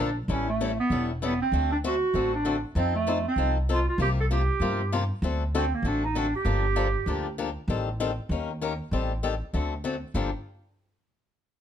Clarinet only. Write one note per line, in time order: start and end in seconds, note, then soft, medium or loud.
0.00 0.16 D4 medium
0.31 0.47 C#4 medium
0.49 0.77 A3 medium
0.80 1.07 B3 medium
1.24 1.39 B3 medium
1.41 1.69 C4 medium
1.72 1.77 D4 medium
1.86 2.30 F#4 medium
2.34 2.62 D4 medium
2.77 2.93 C4 medium
2.95 3.23 A3 medium
3.28 3.55 C4 medium
3.72 3.87 F4 medium
3.88 3.99 F4 medium
4.02 4.09 G4 medium
4.20 4.25 A4 medium
4.32 5.06 G4 medium
5.56 5.76 C4 medium
5.74 5.88 A#3 medium
5.87 6.03 D4 medium
6.05 6.19 D#4 medium
6.18 6.34 D4 medium
6.35 7.35 G4 medium